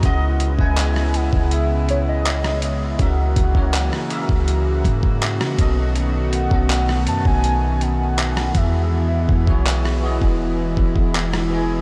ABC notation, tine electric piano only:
X:1
M:4/4
L:1/16
Q:1/4=81
K:C#m
V:1 name="Tine electric piano"
[C,G,EBd]2 z [C,G,EBf]4- [C,G,EBf] z8 | [C,CFG^Ae]2 z [C,CFGAc]2 z [C,CFGAe]4- [C,CFGAe] z3 [B,,B,C=Ad]2- | [B,,B,CAd]2 z [B,,B,CAd]4- [B,,B,CAd] z6 [E,B,FGe]2- | [E,B,FGe]2 z [E,B,FGc]2 z [E,B,FGd]4- [E,B,FGd] z3 [E,B,FGd] z |]